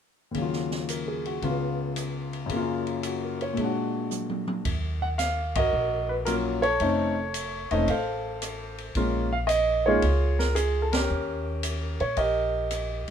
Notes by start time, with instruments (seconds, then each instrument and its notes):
0.31 grand piano D#2 C#3, ride
0.35 grand piano F#3, kick
0.42 grand piano F4
0.53 snare
0.71 snare
0.89 grand piano A#4, hi-hat pedal, ride
1.08 grand piano G#4
1.25 grand piano F#4, ride
1.42 grand piano C#2 C#3 B3 F4, kick, ride
1.96 cross-stick, hi-hat pedal, ride
2.33 ride
2.46 grand piano F#2 C#3, kick, ride
2.53 grand piano A#3 F4
2.87 ride
3.03 grand piano F#4, hi-hat pedal, ride
3.24 grand piano A#4
3.41 grand piano C#5, ride
3.53 grand piano A#2 G#3, ride
3.58 grand piano D4, kick
3.64 grand piano F#4
4.11 hi-hat pedal, mid tom
4.29 mid tom
4.47 mid tom
4.65 upright bass D#2, kick, ride
5.02 grand piano F#5
5.18 grand piano F5, snare, hi-hat pedal, ride
5.55 grand piano F#4 A#4 D#5, kick, ride
5.73 upright bass A#1
6.09 grand piano B4
6.25 grand piano F#3 A#3 C#4 F4 A#4, cross-stick, hi-hat pedal, ride
6.62 grand piano A4 C#5, ride
6.80 upright bass F1, grand piano A3 C4 C#4 D#4, kick, ride
7.34 hi-hat pedal, ride
7.71 upright bass E1, grand piano A3 C4 C#4 D#4 D#5, ride
7.88 upright bass A1, grand piano A4 C5 F5, kick, ride
8.42 cross-stick, hi-hat pedal, ride
8.78 ride
8.95 upright bass A#1, grand piano G#3 A#3 C#4 F4, kick, ride
9.33 grand piano F5
9.47 grand piano D#5, hi-hat pedal, ride
9.86 grand piano G#3 A#3 C#4 D#4 F4 G#4 C#5
10.02 upright bass C#2, kick, ride
10.39 grand piano A#4, snare
10.55 grand piano G#4, cross-stick, hi-hat pedal, ride
10.82 grand piano A4
10.92 grand piano C#4 G4 A#4, snare, ride
11.10 upright bass D#2
11.63 hi-hat pedal, ride
12.00 upright bass A#2, grand piano C#5, ride
12.17 upright bass A#1, grand piano G4 A#4 D#5, kick, ride
12.71 cross-stick, hi-hat pedal, ride